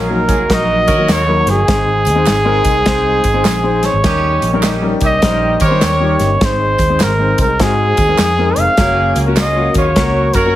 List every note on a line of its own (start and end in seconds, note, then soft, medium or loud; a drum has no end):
0.00 0.29 A#1 medium
0.00 1.66 F#3 medium
0.00 1.65 A#3 medium
0.00 0.21 C#4 medium
0.00 8.74 D#4 medium
0.00 0.21 F4 medium
0.00 1.66 F#4 medium
0.00 0.21 G#4 medium
0.00 0.54 A#4 medium
0.09 0.38 F#3 medium
0.09 0.38 A#3 medium
0.09 0.39 D#4 medium
0.09 0.39 A#4 medium
0.28 0.47 C2 medium
0.28 0.45 C#4 medium
0.28 0.45 F4 medium
0.28 0.45 G#4 medium
0.28 kick medium
0.28 closed hi-hat medium
0.28 tambourine medium
0.49 0.89 A#1 medium
0.49 0.86 F#3 medium
0.49 0.86 A#3 medium
0.49 0.80 D#4 medium
0.49 0.87 D#4 medium
0.49 0.80 F#4 medium
0.49 0.80 A#4 medium
0.49 0.87 A#4 medium
0.49 1.13 D#5 loud
0.49 kick medium
0.49 snare loud
0.49 closed hi-hat medium
0.49 tambourine soft
0.87 1.06 D#3 medium
0.87 1.43 F#4 loud
0.87 1.43 A#4 loud
0.87 1.43 C#5 loud
0.87 kick medium
0.87 closed hi-hat medium
0.87 tambourine soft
0.98 1.14 F#3 medium
0.98 1.14 A#3 medium
0.98 1.14 D#4 medium
0.98 1.15 A#4 medium
1.08 1.41 D#2 medium
1.08 1.51 C#5 loud
1.08 snare loud
1.08 clap medium
1.08 closed hi-hat medium
1.08 tambourine medium
1.28 1.57 F#3 medium
1.28 1.57 A#3 medium
1.28 1.57 D#4 medium
1.28 1.57 A#4 medium
1.46 1.65 G1 loud
1.46 3.87 G#4 loud
1.46 snare soft
1.46 closed hi-hat medium
1.67 2.07 G#1 medium
1.67 4.02 G#3 medium
1.67 2.05 G#3 medium
1.67 4.02 C4 medium
1.67 2.05 C4 medium
1.67 2.05 D#4 medium
1.67 4.02 G#4 medium
1.67 2.05 C5 medium
1.67 kick loud
1.67 snare loud
1.67 closed hi-hat medium
1.67 tambourine soft
2.05 2.24 D#2 medium
2.05 closed hi-hat medium
2.05 tambourine soft
2.15 2.32 G#3 medium
2.15 2.32 C4 medium
2.15 2.33 D#4 medium
2.15 2.33 C5 medium
2.26 2.60 G#1 medium
2.26 snare loud
2.26 clap medium
2.26 closed hi-hat medium
2.26 tambourine medium
2.45 2.75 G#3 loud
2.45 2.75 C4 medium
2.45 2.75 D#4 medium
2.45 2.75 A#4 loud
2.64 2.84 C2 medium
2.64 kick medium
2.64 closed hi-hat medium
2.64 tambourine medium
2.86 3.19 C2 loud
2.86 3.23 G#3 medium
2.86 3.23 C4 medium
2.86 3.23 D#4 medium
2.86 3.23 C5 loud
2.86 kick medium
2.86 snare loud
2.86 closed hi-hat medium
3.24 3.43 G#1 medium
3.24 kick medium
3.24 closed hi-hat medium
3.24 tambourine soft
3.34 3.51 G#3 medium
3.34 3.51 C4 medium
3.34 3.51 D#4 medium
3.34 3.51 C5 medium
3.45 3.87 A#1 medium
3.45 snare loud
3.45 clap medium
3.45 closed hi-hat loud
3.45 tambourine medium
3.64 3.93 G#3 medium
3.64 3.93 C4 medium
3.64 3.93 D#4 medium
3.64 3.93 C5 medium
3.83 4.68 C#5 medium
3.83 snare soft
3.83 closed hi-hat medium
3.83 tambourine soft
3.93 4.03 G#1 medium
4.04 4.37 D#2 loud
4.04 4.41 G3 medium
4.04 6.39 A#3 medium
4.04 4.50 C#4 loud
4.04 6.39 C#4 medium
4.04 4.41 C#4 medium
4.04 4.50 D#4 loud
4.04 4.41 D#4 medium
4.04 4.50 G4 loud
4.04 6.39 G4 medium
4.04 4.42 A#4 medium
4.04 kick loud
4.04 snare loud
4.04 closed hi-hat medium
4.04 tambourine soft
4.42 4.94 A#1 medium
4.42 closed hi-hat medium
4.42 tambourine soft
4.53 4.69 G3 medium
4.53 4.70 C#4 medium
4.53 4.62 D#4 medium
4.53 4.70 D#4 medium
4.53 4.62 G4 medium
4.53 4.62 A#4 medium
4.53 4.70 A#4 loud
4.63 4.94 C#4 medium
4.63 4.94 D#4 medium
4.63 4.94 G4 medium
4.63 snare medium
4.63 clap loud
4.63 closed hi-hat medium
4.63 tambourine medium
4.82 5.11 G3 medium
4.82 5.11 C#4 medium
4.82 5.12 D#4 medium
4.82 5.12 A#4 medium
5.01 5.20 C2 medium
5.01 5.19 C#4 medium
5.01 5.19 D#4 medium
5.01 5.19 G4 medium
5.01 kick medium
5.01 closed hi-hat medium
5.01 tambourine medium
5.05 5.58 D#5 medium
5.22 5.55 A#1 loud
5.22 5.60 G3 medium
5.22 5.60 C#4 medium
5.22 5.53 D#4 medium
5.22 5.60 D#4 medium
5.22 5.53 G4 medium
5.22 5.53 A#4 medium
5.22 5.60 C5 medium
5.22 kick medium
5.22 snare loud
5.22 closed hi-hat medium
5.22 tambourine soft
5.60 5.79 D#3 medium
5.60 6.16 G4 loud
5.60 6.16 A#4 loud
5.60 6.16 C#5 loud
5.60 kick medium
5.60 closed hi-hat medium
5.60 tambourine medium
5.64 5.88 C5 medium
5.71 5.88 G3 medium
5.71 5.88 C#4 medium
5.71 5.88 D#4 medium
5.71 5.88 C#5 medium
5.81 6.15 D#2 medium
5.81 snare loud
5.81 clap medium
5.81 closed hi-hat loud
5.81 tambourine medium
5.86 6.47 C#5 medium
6.00 6.30 G3 medium
6.00 6.30 C#4 medium
6.00 6.30 D#4 medium
6.00 6.30 G4 medium
6.20 6.38 G1 medium
6.20 snare soft
6.20 closed hi-hat medium
6.20 tambourine soft
6.41 6.74 G#1 medium
6.41 8.76 G#3 medium
6.41 6.78 G#3 medium
6.41 8.76 C4 medium
6.41 6.78 C4 medium
6.41 6.78 D#4 medium
6.41 8.76 G#4 medium
6.41 6.78 C5 medium
6.41 kick loud
6.41 snare loud
6.41 closed hi-hat medium
6.41 tambourine medium
6.45 7.04 C5 medium
6.78 7.01 D#2 medium
6.78 kick medium
6.78 closed hi-hat medium
6.78 tambourine soft
6.90 7.06 G#3 medium
6.90 7.06 C4 medium
6.90 7.06 D#4 medium
6.90 7.07 C5 medium
6.99 7.33 G#1 medium
6.99 7.39 A#4 medium
6.99 snare loud
6.99 clap medium
6.99 closed hi-hat medium
6.99 tambourine medium
7.19 7.48 G#3 medium
7.19 7.48 C4 medium
7.19 7.49 D#4 medium
7.19 7.49 C5 medium
7.38 7.57 C2 medium
7.38 7.63 A#4 medium
7.38 kick medium
7.38 closed hi-hat medium
7.38 tambourine medium
7.59 7.92 G#2 medium
7.59 7.96 G#3 medium
7.59 7.97 C4 medium
7.59 7.97 D#4 medium
7.59 7.97 F#4 medium
7.59 8.60 G#4 loud
7.59 kick medium
7.59 snare loud
7.59 closed hi-hat medium
7.59 tambourine soft
7.97 8.16 D#2 medium
7.97 kick medium
7.97 closed hi-hat medium
7.97 tambourine soft
8.08 8.25 G#3 medium
8.08 8.25 C4 medium
8.08 8.25 D#4 medium
8.08 8.25 A#4 medium
8.18 8.52 F2 medium
8.18 snare loud
8.18 clap medium
8.18 closed hi-hat medium
8.18 tambourine medium
8.38 8.67 G#3 medium
8.38 8.67 C4 medium
8.38 8.67 D#4 medium
8.38 8.68 A#4 medium
8.56 8.66 F1 medium
8.56 9.19 F5 medium
8.56 closed hi-hat medium
8.56 tambourine soft
8.77 9.11 F#1 loud
8.77 10.55 F#3 medium
8.77 9.24 A#3 medium
8.77 9.15 A#3 medium
8.77 10.55 A#3 medium
8.77 9.24 C#4 medium
8.77 10.55 C#4 medium
8.77 9.15 C#4 medium
8.77 10.55 F#4 medium
8.77 9.15 F#4 medium
8.77 9.24 G#4 loud
8.77 9.15 C#5 medium
8.77 kick loud
8.77 snare loud
8.77 closed hi-hat medium
8.77 tambourine medium
9.15 9.68 C#2 medium
9.15 closed hi-hat medium
9.15 tambourine soft
9.26 9.43 A#3 medium
9.26 9.43 C#4 medium
9.26 9.35 C#4 medium
9.26 9.43 F#4 medium
9.26 9.35 F#4 medium
9.26 9.35 A#4 medium
9.26 9.43 A#4 medium
9.36 9.68 C#4 medium
9.36 9.68 F4 medium
9.36 9.68 G#4 medium
9.36 9.73 D#5 medium
9.36 snare loud
9.36 clap medium
9.36 closed hi-hat medium
9.36 tambourine medium
9.56 9.85 A#3 medium
9.56 9.85 C#4 medium
9.56 9.85 F#4 medium
9.56 9.85 C#5 medium
9.74 9.94 D#2 medium
9.74 9.93 C#4 medium
9.74 9.93 F4 medium
9.74 9.93 G#4 medium
9.74 10.36 C#5 medium
9.74 kick medium
9.74 closed hi-hat medium
9.74 tambourine medium
9.96 10.29 C#2 medium
9.96 10.33 A#3 medium
9.96 10.33 C#4 medium
9.96 10.27 C#4 medium
9.96 10.27 F#4 medium
9.96 10.34 F#4 medium
9.96 10.27 A#4 medium
9.96 10.34 A#4 medium
9.96 kick medium
9.96 snare loud
9.96 closed hi-hat medium
10.33 10.53 F#2 medium
10.33 10.55 F#4 loud
10.33 10.55 A#4 medium
10.33 10.55 A#4 loud
10.33 10.55 C#5 loud
10.33 kick medium
10.33 closed hi-hat medium
10.33 tambourine medium
10.45 10.55 A#3 medium
10.45 10.55 C#4 medium
10.45 10.55 F#4 medium
10.45 10.55 C#5 medium